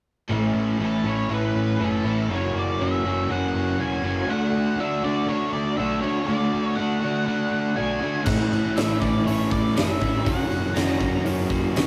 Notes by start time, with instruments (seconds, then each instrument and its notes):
0.28 picked electric bass A1, overdriven electric guitar A2 E3 A3 C#4 E4
0.53 picked electric bass A1, overdriven electric guitar A3 C#4 E4
0.78 picked electric bass A1, overdriven electric guitar A2 E3 A3 C#4 E4
0.85 lead electric guitar A4
1.04 picked electric bass A1, overdriven electric guitar A2 E3 A3 C#4 E4
1.09 lead electric guitar C#5
1.28 picked electric bass A1, overdriven electric guitar A2 E3 A3 C#4 E4
1.34 lead electric guitar B4
1.54 picked electric bass A1, overdriven electric guitar A3 C#4 E4
1.79 picked electric bass F#1, overdriven electric guitar A2 E3 A3 C#4 E4
1.84 lead electric guitar A4
2.04 picked electric bass A1, overdriven electric guitar A2 E3 A3 C#4 E4
2.28 picked electric bass F#1, overdriven electric guitar F#2 C#3 E3 F#3 A#3 C#4
2.33 overdriven electric guitar F#4, lead electric guitar C#5
2.53 picked electric bass F#1, overdriven electric guitar E3 A#3 C#4 F#4
2.59 lead electric guitar D5
2.79 picked electric bass F#1, overdriven electric guitar F#2 C#3 E3 F#3 A#3 C#4 F#4, lead electric guitar E5
3.03 picked electric bass F#1, overdriven electric guitar F#2 C#3 F#3 A#3 C#4 F#4
3.08 overdriven electric guitar E3
3.28 picked electric bass F#1, overdriven electric guitar F#2 C#3 E3 F#3 A#3 C#4 F#4, lead electric guitar F#5
3.54 picked electric bass F#1, overdriven electric guitar E3 A#3 C#4 F#4
3.78 picked electric bass E1, overdriven electric guitar F#2 C#3 E3 F#3 A#3 C#4 F#4, lead electric guitar G#5
4.02 picked electric bass F#1, overdriven electric guitar F#2 C#3 F#3 C#4 F#4
4.06 overdriven electric guitar E3 A#3
4.27 picked electric bass D2, overdriven electric guitar D3 A3 D4, lead electric guitar F#5
4.32 overdriven electric guitar F#4
4.52 picked electric bass D2, overdriven electric guitar D4 F#4
4.56 overdriven electric guitar A3
4.76 picked electric bass D2, overdriven electric guitar D3 A3, lead electric guitar E5
4.81 overdriven electric guitar D4 F#4
5.03 picked electric bass D2, overdriven electric guitar D3 A3 D4 F#4, lead electric guitar D5
5.27 picked electric bass D2, overdriven electric guitar D3 A3 D4, lead electric guitar C#5
5.31 overdriven electric guitar F#4
5.53 picked electric bass D2, overdriven electric guitar A3 D4 F#4, lead electric guitar D5
5.77 picked electric bass B1, overdriven electric guitar D3 A3 D4 F#4, lead electric guitar E5
6.01 picked electric bass D2, overdriven electric guitar D3 D4 F#4, lead electric guitar C#5
6.05 overdriven electric guitar A3
6.27 picked electric bass D2, overdriven electric guitar D3 A3 D4 F#4, lead electric guitar D5
6.52 picked electric bass D2, overdriven electric guitar A3 D4 F#4
6.65 lead electric guitar C#5
6.75 picked electric bass D2, overdriven electric guitar D3 A3 D4, lead electric guitar F#5
6.79 overdriven electric guitar F#4
7.02 picked electric bass D2, overdriven electric guitar D3 A3 D4 F#4
7.26 picked electric bass D2, overdriven electric guitar D3 A3 D4 F#4
7.51 picked electric bass D2, overdriven electric guitar A3 D4 F#4
7.75 picked electric bass B1, overdriven electric guitar D3 A3 D4 F#4, lead electric guitar G#5
8.02 picked electric bass D2, overdriven electric guitar D3 A3 D4 F#4
8.25 picked electric bass A1, overdriven electric guitar A2 E3 A3 C#4 E4, lead electric guitar F#5, kick, tambourine, crash
8.50 picked electric bass A1, overdriven electric guitar A3 C#4 E4, tambourine
8.66 tambourine
8.75 picked electric bass A1, overdriven electric guitar A2 E3 A3 C#4 E4, lead electric guitar E5, snare, open hi-hat, tambourine
8.91 tambourine
8.99 picked electric bass A1, overdriven electric guitar A2 E3 A3 C#4 E4, lead electric guitar D5, kick, tambourine
9.24 picked electric bass A1, overdriven electric guitar A2 E3 A3 C#4 E4, lead electric guitar C#5, open hi-hat
9.42 tambourine
9.50 picked electric bass A1, overdriven electric guitar A3 C#4 E4, lead electric guitar D5, kick, tambourine
9.65 tambourine
9.74 picked electric bass F#1, overdriven electric guitar A2 E3 A3 C#4 E4, lead electric guitar E5, snare, open hi-hat, tambourine
10.00 picked electric bass A1, overdriven electric guitar A2 E3 A3 C#4 E4, kick
10.24 picked electric bass F#1, overdriven electric guitar F#2 C#3 E3 A#3 C#4 F#4, lead electric guitar F#5, kick, open hi-hat, tambourine
10.28 overdriven electric guitar F#3
10.49 picked electric bass F#1, overdriven electric guitar E3 A#3 C#4 F#4, tambourine
10.74 picked electric bass F#1, overdriven electric guitar F#2 C#3 E3 F#3 A#3 C#4 F#4, lead electric guitar A#5, snare, open hi-hat, tambourine
10.90 tambourine
10.98 picked electric bass F#1, overdriven electric guitar F#2 C#3 E3 F#3 A#3 C#4 F#4, kick
11.02 tambourine
11.14 tambourine
11.23 picked electric bass F#1, overdriven electric guitar F#2 C#3 E3 F#3 A#3 C#4 F#4, open hi-hat
11.40 tambourine
11.49 picked electric bass F#1, overdriven electric guitar E3 A#3 C#4 F#4, kick, tambourine
11.65 tambourine
11.74 picked electric bass E1, overdriven electric guitar F#2 C#3 E3 F#3 A#3 C#4 F#4, snare, open hi-hat, tambourine